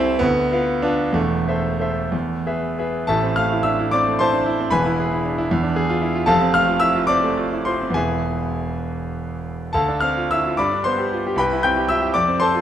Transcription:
0.00 0.25 C2 medium
0.00 0.20 C4 loud
0.00 0.24 E4 loud
0.00 0.24 A4 medium
0.00 0.24 C5 medium
0.00 0.24 E5 medium
0.19 0.51 D2 medium
0.19 0.82 B3 loud
0.52 0.80 F4 medium
0.52 0.80 B4 medium
0.52 0.81 F5 medium
0.82 1.15 D4 medium
0.82 1.12 F4 medium
0.82 1.13 B4 medium
0.82 1.13 F5 medium
1.13 1.46 E1 medium
1.13 1.45 E2 medium
1.13 2.77 A3 medium
1.48 1.77 A4 medium
1.48 1.77 C5 medium
1.48 1.77 E5 medium
1.80 2.09 A4 soft
1.80 2.10 C5 medium
1.80 2.10 E5 medium
2.12 2.44 E2 medium
2.47 2.76 G#4 medium
2.47 2.76 B4 medium
2.47 2.76 E5 medium
2.79 3.06 G#4 medium
2.79 3.06 B4 soft
2.79 3.06 E5 medium
3.07 4.67 A1 medium
3.07 4.67 A2 medium
3.07 3.35 A4 medium
3.07 3.35 E5 medium
3.07 3.36 A5 medium
3.23 3.45 C4 medium
3.36 3.60 A3 medium
3.36 3.63 F5 medium
3.36 3.64 F6 medium
3.52 3.74 E4 medium
3.63 3.79 D4 medium
3.63 3.90 E5 medium
3.63 3.92 E6 medium
3.79 4.01 E4 medium
3.91 4.15 C4 medium
3.91 4.18 D5 medium
3.91 4.19 D6 loud
4.07 4.28 A3 medium
4.19 4.41 E4 medium
4.19 4.68 C5 medium
4.19 4.68 A5 medium
4.19 4.71 C6 medium
4.33 4.46 D4 medium
4.46 4.66 E4 medium
4.60 4.72 C4 medium
4.70 5.47 E1 medium
4.70 5.48 E2 medium
4.70 5.99 B4 medium
4.70 5.99 G#5 medium
4.70 6.02 B5 loud
4.85 5.05 E4 medium
5.00 5.19 G#4 medium
5.12 5.32 E4 medium
5.25 5.38 D4 medium
5.38 5.51 E4 medium
5.51 6.27 E2 medium
5.63 5.84 D4 medium
5.76 5.97 G#4 medium
5.89 6.10 F4 medium
6.01 6.15 E4 medium
6.15 6.28 F4 medium
6.26 7.91 F1 medium
6.26 7.91 F2 medium
6.26 6.52 A4 medium
6.26 6.53 F5 medium
6.26 6.54 A5 loud
6.41 6.63 C4 medium
6.54 6.76 A3 medium
6.54 6.80 F5 medium
6.54 6.81 F6 loud
6.68 6.89 F4 medium
6.80 6.95 E4 soft
6.80 7.06 E5 medium
6.80 7.08 E6 loud
6.95 7.17 F4 medium
7.07 7.31 C4 medium
7.07 7.62 D5 medium
7.07 7.65 D6 loud
7.23 7.46 A3 medium
7.37 7.60 F4 medium
7.52 7.66 E4 medium
7.65 7.90 F4 medium
7.65 7.94 C5 medium
7.65 7.95 C6 medium
7.81 7.96 C4 medium
7.90 9.67 E2 medium
7.90 9.69 B3 medium
7.90 9.69 E4 soft
7.90 9.44 G#5 medium
7.94 9.69 E1 medium
7.94 9.40 G#4 medium
7.94 9.40 E5 medium
9.73 10.56 D2 medium
9.73 10.01 A4 medium
9.73 10.01 F5 medium
9.73 10.02 A5 medium
9.88 10.11 D4 medium
10.01 10.25 C4 medium
10.01 10.29 F5 medium
10.01 10.30 F6 medium
10.17 10.39 F4 medium
10.31 10.45 E4 soft
10.31 10.57 E5 medium
10.31 10.58 E6 medium
10.47 10.59 F4 medium
10.57 11.35 G2 medium
10.57 10.83 D5 medium
10.57 10.83 B5 medium
10.57 10.84 D6 loud
10.72 10.93 D4 medium
10.84 11.06 B3 medium
10.84 11.34 C5 medium
10.84 11.37 C6 loud
10.98 11.19 G4 medium
11.13 11.25 F4 medium
11.27 11.39 G4 medium
11.36 12.11 C2 medium
11.36 11.63 B4 medium
11.36 11.63 G5 medium
11.36 11.64 B5 loud
11.53 11.72 E4 medium
11.63 11.85 C4 medium
11.63 11.88 G5 medium
11.63 11.89 G6 loud
11.77 11.97 G4 medium
11.89 12.02 F4 soft
11.89 12.13 E5 medium
11.89 12.14 E6 medium
12.02 12.14 G4 medium
12.14 12.61 F2 medium
12.14 12.38 D5 medium
12.14 12.39 D6 loud
12.28 12.48 C4 medium
12.40 12.61 A4 medium
12.40 12.61 C5 medium
12.40 12.61 A5 medium
12.40 12.61 C6 loud
12.55 12.61 F4 medium

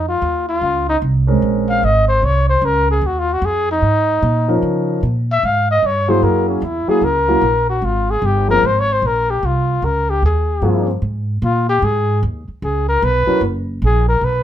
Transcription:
0.00 0.21 F2 medium
0.08 0.45 F4 medium
0.22 0.60 D#2 medium
0.49 0.85 F4 medium
0.62 1.00 C#2 medium
0.89 0.97 D#4 medium
1.02 1.41 C2 medium
1.27 1.79 G#3 medium
1.27 1.79 C4 soft
1.27 1.79 C#4 soft
1.27 1.79 A#4 medium
1.42 1.81 A#1 medium
1.69 1.86 F5 medium
1.83 2.21 G#1 medium
1.83 2.08 D#5 medium
2.08 2.26 C5 medium
2.22 2.61 C2 medium
2.22 2.49 C#5 medium
2.49 2.67 C5 medium
2.62 3.01 C#2 medium
2.62 2.89 A#4 medium
2.91 3.08 G#4 medium
3.01 3.41 D#2 medium
3.07 3.21 F#4 medium
3.19 3.34 F4 medium
3.33 3.47 F#4 medium
3.42 3.81 F2 medium
3.42 3.69 G#4 medium
3.71 4.60 D#4 medium
3.82 4.21 G#2 medium
4.22 4.61 A#2 medium
4.48 5.00 F3 medium
4.48 5.00 C#4 soft
4.48 5.00 D#4 medium
4.48 5.00 A#4 medium
4.62 5.01 C#3 medium
5.03 5.42 A#2 medium
5.32 5.47 E5 medium
5.43 5.82 G#2 medium
5.43 5.70 F5 medium
5.71 5.88 D#5 medium
5.83 6.21 G2 medium
5.83 6.11 C#5 medium
6.08 6.60 F#3 medium
6.08 6.60 A#3 medium
6.08 6.60 E4 medium
6.08 6.60 G#4 medium
6.08 6.25 C5 medium
6.22 6.61 F#2 medium
6.22 6.48 A#4 medium
6.49 6.65 C#4 medium
6.62 6.86 E2 medium
6.62 6.89 E4 medium
6.88 7.01 F#3 medium
6.88 7.01 A#3 medium
6.88 7.01 E4 medium
6.88 7.02 G#4 medium
6.88 7.05 G#4 medium
6.88 muted upright bass stroke soft
7.01 7.41 C#2 medium
7.01 7.69 A#4 medium
7.28 7.41 F#3 medium
7.28 7.41 A#3 medium
7.28 7.41 E4 medium
7.28 7.42 A#4 medium
7.41 7.81 A#1 medium
7.70 7.86 F#4 medium
7.82 8.21 G#1 medium
7.82 8.12 F4 medium
8.11 8.27 G#4 medium
8.22 8.61 G1 medium
8.22 8.50 G4 medium
8.48 8.61 F3 soft
8.48 8.61 A#3 soft
8.48 8.61 C4 soft
8.48 8.62 G#4 medium
8.48 8.68 A#4 medium
8.63 9.02 G#1 medium
8.63 8.81 C5 medium
8.79 8.94 C#5 medium
8.93 9.08 C5 medium
9.02 9.41 A#1 medium
9.06 9.32 A#4 medium
9.31 9.47 G4 medium
9.43 9.82 C2 medium
9.43 9.86 F4 medium
9.82 10.21 C#2 medium
9.82 10.12 A#4 medium
10.10 10.24 G4 medium
10.22 10.61 D#2 medium
10.22 10.93 G#4 medium
10.62 11.01 G2 medium
10.62 10.86 F3 soft
10.62 10.86 A#3 soft
10.62 10.86 C4 soft
10.62 10.86 G#4 medium
11.02 11.41 G#2 medium
11.42 11.81 A#2 medium
11.42 11.67 F4 medium
11.69 11.86 G4 medium
11.82 12.21 G#2 medium
11.82 12.23 G#4 medium
12.23 12.46 D#2 medium
12.48 muted upright bass stroke soft
12.62 13.01 C#2 medium
12.62 12.87 G#4 medium
12.89 13.06 A#4 medium
13.02 13.26 B1 medium
13.02 13.43 B4 medium
13.27 13.40 F#3 soft
13.27 13.41 C#4 soft
13.27 13.40 E4 soft
13.27 13.41 A#4 medium
13.27 muted upright bass stroke soft
13.41 13.80 F#1 medium
13.82 14.21 A#1 medium
13.86 14.08 G#4 medium
14.08 14.26 A#4 medium
14.21 14.43 B1 medium
14.21 14.43 B4 medium

